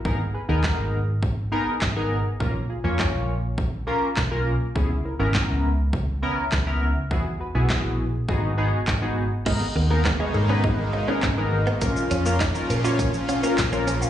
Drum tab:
CC |----------------|----------------|----------------|----------------|
HH |----------------|----------------|----------------|----------------|
SH |----------------|----------------|----------------|----------------|
CP |----x-------x---|----x-------x---|----x-------x---|----x-------x---|
SD |----o-------o---|----o-------o---|----o-------o---|----o-------o---|
BD |o---o---o---o---|o---o---o---o---|o---o---o---o---|o---o---o---o---|

CC |x---------------|----------------|
HH |----------------|x-x-x-x-x-x-x-x-|
SH |----------------|xxxxxxxxxxxxxxxx|
CP |----x-------x---|----x-------x---|
SD |----o-------o---|----o-------o---|
BD |o---o---o---o---|o---o---o---o---|